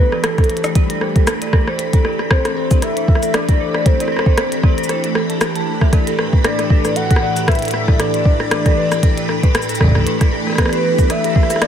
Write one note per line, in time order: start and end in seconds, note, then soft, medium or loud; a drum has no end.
0.00 11.67 E3 medium
0.00 11.67 A3 medium
0.00 11.67 D4 medium
0.00 11.67 G4 medium
0.00 0.24 A4 loud
0.00 0.23 B4 loud
0.00 0.38 C5 medium
0.00 0.12 D5 medium
0.00 11.67 B5 medium
0.12 0.22 D5 medium
0.12 cross-stick medium
0.24 0.36 A4 loud
0.24 0.77 A4 loud
0.24 cross-stick loud
0.24 closed hi-hat medium
0.38 0.49 C5 medium
0.38 kick loud
0.38 cross-stick medium
0.38 closed hi-hat soft
0.44 closed hi-hat soft
0.50 0.62 A4 medium
0.50 closed hi-hat soft
0.57 closed hi-hat soft
0.64 0.74 A4 loud
0.64 cross-stick medium
0.64 closed hi-hat soft
0.64 cabasa medium
0.75 1.29 G4 medium
0.75 0.88 D5 medium
0.75 kick loud
0.75 closed hi-hat medium
0.90 1.00 A4 loud
0.90 closed hi-hat medium
1.01 1.15 C5 medium
1.01 cross-stick medium
1.16 1.26 A4 medium
1.16 kick loud
1.16 closed hi-hat soft
1.27 1.67 A4 medium
1.27 1.40 A4 loud
1.27 cross-stick loud
1.27 closed hi-hat medium
1.27 cabasa medium
1.42 1.51 D5 medium
1.42 closed hi-hat medium
1.53 1.65 A4 loud
1.53 kick loud
1.53 cross-stick medium
1.68 1.78 C5 medium
1.68 cross-stick medium
1.79 1.91 A4 medium
1.79 closed hi-hat medium
1.93 2.03 A4 loud
1.93 kick loud
1.93 closed hi-hat medium
2.05 2.17 D5 medium
2.05 cross-stick medium
2.19 2.29 A4 loud
2.19 cross-stick soft
2.31 2.84 C5 medium
2.31 kick loud
2.31 cross-stick loud
2.45 2.55 A4 medium
2.45 cross-stick medium
2.45 closed hi-hat medium
2.57 2.69 A4 loud
2.71 2.81 D5 medium
2.71 kick loud
2.71 closed hi-hat soft
2.71 cabasa medium
2.82 2.95 A4 loud
2.82 3.35 E5 loud
2.82 cross-stick medium
2.82 closed hi-hat medium
2.97 3.08 C5 medium
2.97 closed hi-hat medium
3.08 3.21 A4 medium
3.08 kick loud
3.15 cross-stick medium
3.23 3.33 A4 loud
3.23 closed hi-hat soft
3.23 cabasa medium
3.34 3.87 D5 loud
3.34 3.47 D5 medium
3.34 cross-stick loud
3.34 closed hi-hat medium
3.49 3.58 A4 loud
3.49 kick loud
3.49 closed hi-hat medium
3.60 3.74 C5 medium
3.74 3.84 A4 medium
3.74 cross-stick medium
3.86 3.98 A4 loud
3.86 5.41 C5 loud
3.86 kick loud
3.86 closed hi-hat medium
4.00 4.10 D5 medium
4.00 cross-stick soft
4.00 closed hi-hat medium
4.08 cross-stick soft
4.12 4.24 A4 loud
4.17 cross-stick soft
4.19 cross-stick medium
4.26 4.37 C5 medium
4.26 kick loud
4.38 4.50 A4 medium
4.38 cross-stick loud
4.38 closed hi-hat medium
4.52 4.62 A4 loud
4.52 closed hi-hat medium
4.63 4.76 D5 medium
4.63 kick loud
4.63 cross-stick medium
4.78 4.88 A4 loud
4.78 closed hi-hat soft
4.84 cabasa medium
4.89 5.03 C5 medium
4.89 cross-stick medium
4.89 closed hi-hat medium
5.04 5.14 A4 medium
5.04 closed hi-hat medium
5.15 5.23 A4 loud
5.15 cross-stick medium
5.30 5.39 A5 medium
5.30 closed hi-hat soft
5.41 5.53 A4 medium
5.41 cross-stick loud
5.41 closed hi-hat medium
5.41 cabasa medium
5.55 5.61 A5 loud
5.55 closed hi-hat soft
5.67 5.79 A5 medium
5.81 5.87 E5 medium
5.81 kick loud
5.81 cross-stick medium
5.93 10.06 A2 medium
5.93 6.05 D5 medium
5.93 kick loud
5.93 cross-stick medium
5.93 closed hi-hat medium
6.07 6.17 A4 loud
6.07 closed hi-hat medium
6.19 6.32 B4 medium
6.19 cross-stick medium
6.33 6.43 A4 medium
6.33 kick loud
6.44 6.57 A4 loud
6.44 6.97 D5 loud
6.44 cross-stick loud
6.44 closed hi-hat medium
6.59 6.69 D5 medium
6.59 cross-stick medium
6.59 closed hi-hat medium
6.70 6.83 A4 loud
6.70 kick loud
6.85 6.96 B4 medium
6.85 cross-stick medium
6.85 closed hi-hat soft
6.85 cabasa medium
6.96 7.09 A4 medium
6.96 7.49 F#5 loud
6.96 closed hi-hat medium
7.11 7.20 A4 loud
7.11 kick loud
7.11 closed hi-hat medium
7.16 cross-stick medium
7.22 7.35 D5 medium
7.37 7.46 A4 loud
7.37 closed hi-hat soft
7.37 cabasa medium
7.48 7.62 B4 medium
7.48 8.01 E5 loud
7.48 kick loud
7.48 cross-stick loud
7.48 closed hi-hat soft
7.52 closed hi-hat soft
7.55 closed hi-hat soft
7.59 closed hi-hat soft
7.62 7.72 A4 medium
7.62 closed hi-hat soft
7.65 closed hi-hat medium
7.68 closed hi-hat medium
7.71 7.86 A4 loud
7.71 cross-stick medium
7.71 closed hi-hat medium
7.88 7.98 D5 medium
7.88 kick loud
7.88 cross-stick medium
8.00 8.12 A4 loud
8.00 9.55 D5 loud
8.00 cross-stick medium
8.00 closed hi-hat medium
8.14 8.25 B4 medium
8.14 closed hi-hat soft
8.25 8.38 A4 medium
8.25 kick loud
8.40 8.50 A4 loud
8.40 cross-stick medium
8.51 8.64 D5 medium
8.51 cross-stick loud
8.51 closed hi-hat medium
8.66 8.76 A4 loud
8.66 kick loud
8.66 cross-stick medium
8.66 closed hi-hat medium
8.77 8.91 B4 medium
8.92 9.01 A4 medium
8.92 cross-stick medium
8.92 closed hi-hat soft
8.92 cabasa medium
9.03 9.15 A4 loud
9.03 kick loud
9.03 closed hi-hat medium
9.17 9.27 D5 medium
9.17 closed hi-hat soft
9.29 9.41 A4 loud
9.29 cross-stick medium
9.43 9.54 B4 medium
9.43 kick loud
9.43 closed hi-hat soft
9.55 9.67 A4 medium
9.55 cross-stick loud
9.55 closed hi-hat medium
9.55 cabasa soft
9.62 cabasa soft
9.69 9.79 A4 loud
9.69 closed hi-hat soft
9.69 cabasa medium
9.75 cabasa medium
9.81 9.93 D5 medium
9.81 kick loud
9.81 cross-stick medium
9.84 kick medium
9.88 kick medium
9.91 10.05 A4 loud
9.91 kick medium
9.95 kick soft
9.95 cross-stick medium
9.98 kick soft
10.01 kick soft
10.04 10.20 B4 medium
10.04 kick soft
10.04 closed hi-hat medium
10.21 10.31 A4 medium
10.21 kick loud
10.21 cross-stick medium
10.21 closed hi-hat medium
10.32 10.45 A4 loud
10.47 10.57 D5 medium
10.47 cross-stick soft
10.50 cross-stick soft
10.53 cross-stick soft
10.55 10.71 A4 loud
10.55 11.11 B4 loud
10.55 kick loud
10.55 cross-stick soft
10.58 cross-stick loud
10.58 closed hi-hat medium
10.62 cross-stick soft
10.65 cross-stick medium
10.69 10.83 B4 medium
10.69 cross-stick soft
10.69 closed hi-hat medium
10.84 10.97 A4 medium
10.99 11.08 A4 loud
10.99 kick loud
10.99 closed hi-hat soft
10.99 cabasa medium
11.10 11.22 D5 medium
11.10 11.63 E5 loud
11.10 cross-stick medium
11.10 closed hi-hat medium
11.24 11.34 A4 loud
11.24 closed hi-hat medium
11.36 11.50 B4 medium
11.36 kick loud
11.36 cross-stick soft
11.43 cross-stick soft
11.50 11.60 A4 medium
11.50 cross-stick soft
11.50 closed hi-hat soft
11.50 cabasa medium
11.56 cross-stick soft
11.61 11.67 A4 loud
11.61 11.67 D5 loud
11.61 cross-stick loud
11.61 closed hi-hat medium